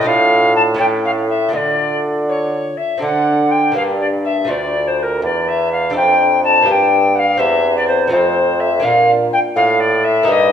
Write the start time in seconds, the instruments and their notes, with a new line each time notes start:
0.01 lute A3 D4 F4
0.06 lute A2, bassoon A2, recorder F5
0.55 recorder A5
0.74 lute A3 C#4 E4
0.79 lute A2, bassoon A2, recorder G5
1.05 recorder F5
1.29 recorder E5
1.49 lute A3 D4 F4
1.53 lute D3, bassoon D3, recorder D5 D#5
2.28 recorder C#5
2.77 recorder E5
2.98 lute C4 D4 A4
3.02 lute D3, bassoon D3, recorder F#5
3.51 recorder G5
3.72 lute A#3 D4 G4
3.76 bassoon G2, lute G2, recorder F5
4.00 recorder D5
4.24 recorder E5
4.45 lute A3 D4 F4
4.49 lute D2, bassoon D2, recorder D5
4.87 recorder C5
4.98 recorder A#4 C5
5.22 lute E2, bassoon E2, recorder D5
5.48 recorder E5
5.71 recorder F5
5.90 lute F2 A3 D4 A4
5.95 bassoon F2, recorder G5
6.44 recorder A5
6.62 lute A#3 D4 G4
6.67 bassoon G2, lute G2, recorder A5
6.71 recorder G5
7.15 recorder F5 F#5
7.37 bassoon E2, lute E2 C4 G4, recorder E5
7.76 recorder D5
7.87 recorder C5
8.07 lute A3 C4 F4
8.12 bassoon F2, lute F2, recorder C5
8.59 recorder E5
8.80 lute A#3 D4 F4
8.84 bassoon A#2, lute A#2, recorder F5
9.33 recorder G5
9.55 bassoon A2, lute A2, recorder F5
9.79 recorder D5
10.04 recorder E5
10.23 lute A#3 D#4 G4
10.28 lute G2, bassoon G2, recorder D#5 E5